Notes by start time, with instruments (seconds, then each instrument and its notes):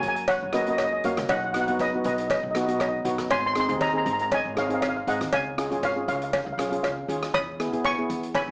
Already playing: steel pan A#3 C#4 F#4
0.00 upright bass F#2, steel pan G#5, closed hi-hat
0.08 steel pan G#5
0.16 steel pan G#5, closed hi-hat
0.28 steel pan C#5 F#5, kick, closed hi-hat, cowbell
0.42 upright bass F#2
0.53 steel pan A#3 C#4 F#4 B4 D#5, cross-stick, closed hi-hat
0.62 steel pan D#5
0.66 steel pan A#3 C#4 F#4 D#5, closed hi-hat
0.77 steel pan D#5, kick, cross-stick, closed hi-hat, cowbell
0.84 steel pan D#5
0.93 steel pan D#5
1.04 upright bass F#2, steel pan A#3 C#4 F#4 C#5 F5, closed hi-hat
1.17 upright bass C#2, cross-stick, closed hi-hat
1.29 upright bass B1, steel pan D#5 F#5, kick, closed hi-hat, cowbell
1.38 steel pan F#5
1.45 steel pan F#5
1.53 steel pan B3 D#4 F#4 F#5, cross-stick, closed hi-hat
1.60 steel pan F#5
1.67 upright bass F#2, steel pan B3 D#4 F#4 F#5, closed hi-hat
1.79 steel pan B4 D#5, kick, closed hi-hat, cowbell
1.94 steel pan B3 D#4 F#4
2.04 upright bass B1, steel pan B4 D#5, closed hi-hat
2.14 steel pan D#5
2.18 steel pan D#5, closed hi-hat
2.27 steel pan D#5, kick, closed hi-hat, cowbell
2.34 steel pan D#5
2.43 upright bass B1, steel pan D#5
2.51 steel pan D#5
2.55 steel pan B3 D#4 F#4 D#5, cross-stick, closed hi-hat
2.65 steel pan B3 D#4 F#4 D#5, closed hi-hat
2.74 steel pan D#5
2.79 steel pan D#5, kick, cross-stick, closed hi-hat, cowbell
2.88 steel pan D#5
3.05 upright bass B1, steel pan B3 D#4 F#4, closed hi-hat
3.18 upright bass F#2, cross-stick, closed hi-hat
3.30 upright bass G#1, steel pan G#5 C6, kick, closed hi-hat, cowbell
3.39 steel pan C6
3.46 steel pan C6
3.54 steel pan C4 D#4 G#4 C6, cross-stick, closed hi-hat
3.60 steel pan C6
3.69 upright bass D#2, steel pan C4 D#4 G#4 C6, closed hi-hat
3.81 steel pan D#5 A#5, kick, closed hi-hat, cowbell
3.89 steel pan A#5
3.93 steel pan C4 D#4 G#4 A#5
4.05 upright bass G#1, steel pan A#5, closed hi-hat
4.13 steel pan A#5
4.19 steel pan A#5, closed hi-hat
4.31 steel pan D#5 G#5, kick, closed hi-hat, cowbell
4.45 upright bass G#1
4.56 steel pan C4 D#4 G#4 C#5 F5, cross-stick, closed hi-hat
4.67 steel pan C4 D#4 G#4 F5, closed hi-hat
4.74 steel pan F5
4.81 steel pan F5, kick, cross-stick, closed hi-hat, cowbell
4.89 steel pan F5
4.97 steel pan F5
5.07 upright bass G#1, steel pan C4 D#4 G#4 D#5 F#5, closed hi-hat
5.21 upright bass D#2, cross-stick, closed hi-hat
5.33 upright bass C#2, steel pan F5 G#5, kick, closed hi-hat, cowbell
5.58 steel pan C#4 F4 G#4, cross-stick, closed hi-hat
5.71 upright bass G#1, steel pan C#4 F4 G#4, closed hi-hat
5.83 steel pan C#5 F5, kick, closed hi-hat, cowbell
5.96 steel pan C#4 F4 G#4
6.08 upright bass C#2, steel pan C#5 F5, closed hi-hat
6.16 steel pan F5
6.22 steel pan F5, closed hi-hat
6.30 steel pan F5, kick, closed hi-hat, cowbell
6.38 steel pan F5
6.45 upright bass C#2, steel pan F5
6.53 steel pan F5
6.58 upright bass B1, steel pan C#4 F4 G#4 F5, cross-stick, closed hi-hat
6.69 steel pan C#4 F4 G#4 F5, closed hi-hat
6.76 steel pan F5
6.83 upright bass C#2, steel pan F5, kick, cross-stick, closed hi-hat, cowbell
6.92 steel pan F5
7.08 upright bass D#2, steel pan C#4 F4 G#4, closed hi-hat
7.23 cross-stick, closed hi-hat
7.34 upright bass E2, steel pan B5 D#6, kick, closed hi-hat, cowbell
7.60 steel pan B3 E4 G#4, cross-stick, closed hi-hat
7.72 upright bass B1, steel pan B3 E4 G#4, closed hi-hat
7.84 steel pan G#5 C#6, kick, closed hi-hat, cowbell
7.98 steel pan B3 E4 G#4
8.10 upright bass E2, closed hi-hat
8.23 closed hi-hat
8.35 steel pan G#5 B5, kick, closed hi-hat, cowbell
8.48 upright bass E2